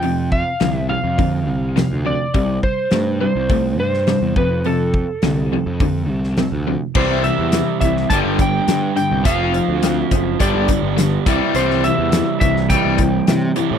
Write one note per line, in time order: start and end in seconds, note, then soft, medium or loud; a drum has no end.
0.00 0.42 F2 medium
0.00 0.55 F2 medium
0.00 0.55 C3 medium
0.00 0.32 G5 medium
0.00 open hi-hat soft
0.32 0.75 F5 medium
0.32 kick medium
0.60 0.95 C2 medium
0.60 0.87 F2 medium
0.60 0.87 D3 medium
0.60 snare loud
0.60 open hi-hat soft
0.75 0.88 E5 medium
0.89 1.16 F2 medium
0.89 1.16 C3 medium
0.89 2.09 F5 medium
1.04 1.48 F2 medium
1.18 1.71 F2 medium
1.18 1.71 D3 medium
1.18 kick medium
1.18 open hi-hat soft
1.48 1.82 C2 medium
1.76 2.02 F2 medium
1.76 2.03 C3 medium
1.76 snare medium
1.76 open hi-hat soft
1.92 2.14 D2 medium
2.05 2.31 F2 medium
2.05 2.32 C3 medium
2.05 2.60 D5 medium
2.34 2.57 C2 medium
2.34 2.86 C3 medium
2.34 2.86 G3 medium
2.34 kick medium
2.34 open hi-hat soft
2.63 3.20 C5 medium
2.63 kick medium
2.91 3.26 G2 medium
2.91 3.18 C3 medium
2.91 3.19 A3 medium
2.91 snare medium
2.91 open hi-hat soft
3.21 3.47 C3 medium
3.21 3.47 G3 medium
3.21 3.79 C5 medium
3.36 3.79 C2 medium
3.49 4.02 C3 medium
3.49 4.02 A3 medium
3.49 kick medium
3.49 open hi-hat soft
3.79 4.13 G2 medium
3.79 4.37 C5 medium
3.94 snare soft
4.07 4.34 C3 medium
4.07 4.34 G3 medium
4.07 snare loud
4.07 open hi-hat soft
4.22 4.33 E2 medium
4.36 5.04 F2 medium
4.36 4.62 F2 medium
4.36 4.63 C3 medium
4.36 4.67 B4 medium
4.36 kick medium
4.64 5.17 F2 medium
4.64 5.18 C3 medium
4.64 6.63 A4 medium
4.64 open hi-hat soft
4.94 kick medium
5.22 5.56 C2 medium
5.22 5.49 F2 medium
5.22 5.49 D3 medium
5.22 snare loud
5.22 open hi-hat soft
5.53 5.78 F2 medium
5.53 5.78 C3 medium
5.66 6.09 F2 medium
5.80 6.33 F2 medium
5.80 6.33 D3 medium
5.80 kick loud
5.80 open hi-hat soft
6.09 6.43 C2 medium
6.24 snare soft
6.37 6.64 F2 medium
6.37 6.64 C3 medium
6.37 snare loud
6.37 open hi-hat soft
6.52 6.75 D2 medium
6.67 6.93 F2 medium
6.67 6.93 C3 medium
6.95 7.29 C2 medium
6.95 7.22 C3 medium
6.95 7.23 E3 medium
6.95 7.23 G3 medium
6.95 8.09 C4 medium
6.95 8.10 E4 medium
6.95 8.10 G4 medium
6.95 7.23 C5 medium
6.95 kick loud
6.95 crash medium
7.24 7.50 C3 medium
7.24 7.50 E3 medium
7.24 7.79 E5 medium
7.24 closed hi-hat soft
7.39 7.61 E2 medium
7.52 7.79 C3 medium
7.52 7.79 E3 medium
7.52 snare medium
7.52 closed hi-hat medium
7.81 8.04 C2 medium
7.81 8.08 C3 medium
7.81 8.08 E3 medium
7.81 8.08 E5 medium
7.81 kick medium
7.81 closed hi-hat medium
7.97 snare soft
8.10 8.22 G1 medium
8.10 8.38 G2 medium
8.10 8.38 D3 medium
8.10 8.38 G3 medium
8.10 9.25 B3 medium
8.10 9.25 D4 medium
8.10 9.25 G4 medium
8.10 8.18 A5 medium
8.10 kick medium
8.10 closed hi-hat medium
8.25 8.59 G1 medium
8.39 8.65 G2 medium
8.39 8.65 D3 medium
8.39 8.95 G5 medium
8.39 kick medium
8.39 closed hi-hat medium
8.68 8.90 G2 medium
8.68 8.94 G2 medium
8.68 8.94 D3 medium
8.68 snare loud
8.68 closed hi-hat medium
8.96 9.22 G2 medium
8.96 9.22 D3 medium
8.96 9.26 G5 medium
8.96 closed hi-hat medium
9.11 9.23 C2 medium
9.24 9.59 F1 medium
9.24 9.52 F3 medium
9.24 9.52 C4 medium
9.24 9.52 F4 medium
9.24 10.40 A4 medium
9.24 9.99 F5 medium
9.24 kick loud
9.24 closed hi-hat medium
9.53 9.80 F3 medium
9.53 9.80 C4 medium
9.53 closed hi-hat medium
9.69 10.02 D2 medium
9.83 10.09 F3 medium
9.83 10.09 C4 medium
9.83 snare loud
9.83 closed hi-hat medium
9.99 10.37 E5 medium
10.11 10.34 F#1 medium
10.11 10.38 F3 medium
10.11 10.38 C4 medium
10.11 kick medium
10.11 closed hi-hat medium
10.40 10.52 G1 medium
10.40 10.67 G2 medium
10.40 10.67 D3 medium
10.40 10.68 G3 medium
10.40 11.26 B3 medium
10.40 11.26 D4 medium
10.40 11.29 G4 medium
10.40 11.23 D5 medium
10.40 kick medium
10.40 closed hi-hat medium
10.54 10.77 G1 medium
10.68 10.95 G2 medium
10.68 10.95 D3 medium
10.68 kick medium
10.68 closed hi-hat medium
10.83 11.17 G1 medium
10.96 11.23 G2 medium
10.96 11.23 D3 medium
10.96 snare medium
10.96 closed hi-hat medium
11.26 11.38 C2 medium
11.26 11.53 C3 medium
11.26 11.54 E3 medium
11.26 11.54 G3 medium
11.26 13.57 E4 medium
11.26 13.58 G4 medium
11.26 kick loud
11.26 closed hi-hat medium
11.55 11.88 C2 medium
11.55 11.82 C3 medium
11.55 11.83 E3 medium
11.55 11.83 G3 medium
11.55 11.85 C5 medium
11.55 closed hi-hat medium
11.70 snare soft
11.84 12.10 C3 medium
11.84 12.10 E3 medium
11.84 12.38 E5 medium
11.84 closed hi-hat medium
11.99 12.21 E2 medium
12.12 12.39 C3 medium
12.12 12.39 E3 medium
12.12 snare loud
12.12 closed hi-hat medium
12.40 12.75 C2 loud
12.40 12.67 C3 medium
12.40 12.68 E3 medium
12.40 12.68 E5 medium
12.40 kick medium
12.40 closed hi-hat medium
12.56 snare soft
12.70 12.97 C3 medium
12.70 12.98 E3 medium
12.70 12.98 G3 medium
12.70 13.78 G5 medium
12.70 kick medium
12.70 closed hi-hat medium
12.85 13.19 C2 medium
12.98 13.25 C3 medium
12.98 13.25 E3 medium
12.98 kick medium
12.98 closed hi-hat medium
13.27 13.54 C3 medium
13.27 13.50 C3 medium
13.27 13.54 E3 medium
13.27 snare loud
13.27 closed hi-hat medium
13.56 13.78 C3 medium
13.56 13.78 E3 medium
13.56 13.78 G3 medium
13.56 13.78 E4 medium
13.56 13.78 G4 medium
13.56 closed hi-hat medium
13.71 13.78 A2 medium